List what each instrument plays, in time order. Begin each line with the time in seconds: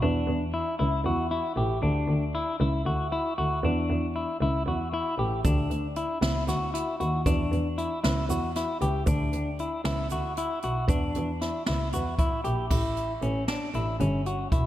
0.02 double bass E2, clean electric guitar D4
0.27 double bass E2
0.54 clean electric guitar E4
0.79 double bass C#2, clean electric guitar E4
1.05 double bass E2, clean electric guitar F#4
1.31 clean electric guitar E4
1.56 double bass A1, clean electric guitar G4
1.82 double bass D2, clean electric guitar D4
2.07 double bass D2
2.35 clean electric guitar E4
2.60 double bass C#2, clean electric guitar E4
2.85 double bass D2, clean electric guitar F#4
3.12 clean electric guitar E4
3.38 double bass D2, clean electric guitar F#4
3.64 double bass E2, clean electric guitar D4
3.90 double bass E2
4.16 clean electric guitar E4
4.41 double bass C#2, clean electric guitar E4
4.66 double bass E2, clean electric guitar F#4
4.94 clean electric guitar E4
5.18 double bass A1, clean electric guitar G4
5.44 double bass D2, clean electric guitar D4, kick, closed hi-hat, shaker
5.70 double bass D2, closed hi-hat
5.96 clean electric guitar E4, closed hi-hat
6.22 double bass C#2, clean electric guitar E4, snare, closed hi-hat
6.47 double bass D2, clean electric guitar F#4, snare, closed hi-hat, shaker
6.74 clean electric guitar E4, closed hi-hat
7.00 double bass D#2, clean electric guitar F#4, closed hi-hat
7.26 double bass E2, clean electric guitar D4, kick, closed hi-hat, shaker
7.51 double bass E2, closed hi-hat
7.78 clean electric guitar E4, closed hi-hat
8.04 double bass C#2, clean electric guitar E4, snare, closed hi-hat
8.29 double bass E2, clean electric guitar F#4, closed hi-hat, shaker
8.55 clean electric guitar E4, snare, closed hi-hat
8.81 double bass C#2, clean electric guitar G4, closed hi-hat
9.06 double bass D2, clean electric guitar D4, kick, closed hi-hat, shaker
9.32 double bass D2, closed hi-hat
9.59 clean electric guitar E4, closed hi-hat
9.85 double bass C#2, clean electric guitar E4, snare, closed hi-hat
10.10 double bass D2, clean electric guitar F#4, closed hi-hat, shaker
10.37 clean electric guitar E4, closed hi-hat
10.62 double bass B1, clean electric guitar F#4, closed hi-hat
10.88 double bass E2, clean electric guitar D4, kick, closed hi-hat, shaker
11.15 double bass E2, closed hi-hat, shaker
11.41 clean electric guitar E4, snare, closed hi-hat
11.66 double bass C#2, clean electric guitar E4, snare, closed hi-hat
11.92 double bass E2, clean electric guitar F#4, closed hi-hat, shaker
12.18 clean electric guitar E4, kick, closed hi-hat, shaker
12.44 double bass A#1, clean electric guitar G4, closed hi-hat
12.70 double bass A1, clean electric guitar E4, kick, crash
12.97 closed hi-hat
13.22 double bass A1, clean electric guitar C#4, closed hi-hat
13.48 clean electric guitar D4, snare, closed hi-hat
13.74 double bass A1, clean electric guitar E4, closed hi-hat
14.00 double bass G1, clean electric guitar C#4, closed hi-hat
14.26 clean electric guitar F#4, closed hi-hat
14.52 double bass E1, clean electric guitar E4, kick, closed hi-hat